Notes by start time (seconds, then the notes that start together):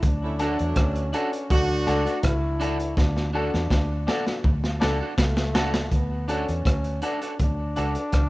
0.02 D2 D4, kick, closed hi-hat
0.21 A3 C#4 E4
0.39 F#3 A3 D4 F#4 A4, closed hi-hat
0.59 E2, closed hi-hat
0.76 D2 C#4, kick, cross-stick, closed hi-hat
0.95 closed hi-hat
1.13 D4 F#4 A4, closed hi-hat
1.32 F#4 A4, closed hi-hat
1.50 D2 A3 D4 F#4, kick, closed hi-hat
1.86 C#2 D4 F#4 A4, closed hi-hat
2.06 D4 F#4 A4, closed hi-hat
2.23 C#2 E4, kick, cross-stick, closed hi-hat
2.60 D4 F#4 A4, closed hi-hat
2.80 F#4 A4, closed hi-hat
2.97 D2 D4, kick, snare
3.17 snare
3.33 D4 F#4 A4
3.54 E2, snare
3.70 D2, kick, snare
4.07 D4 F#4 A4, snare
4.26 F#4 A4, snare
4.44 D2, kick
4.64 snare
4.80 C#2 D4 F#4 A4, snare
5.00 D4 F#4 A4
5.18 C#2 A3, kick, snare
5.37 snare
5.54 D4 F#4 A4, snare
5.74 F#4 A4, snare
5.91 D2 B3, kick, closed hi-hat
6.28 C#4 D4 F#4 A4, closed hi-hat
6.48 E2, closed hi-hat
6.65 D2, kick, cross-stick, closed hi-hat
6.84 closed hi-hat
7.02 D4 F#4 A4, closed hi-hat
7.22 D4 F#4 A4, closed hi-hat
7.39 D2 D4, kick, closed hi-hat
7.76 C#2 D4 F#4 A4, closed hi-hat
7.95 muted clean electric guitar stroke, closed hi-hat
8.12 C#2, kick, cross-stick, closed hi-hat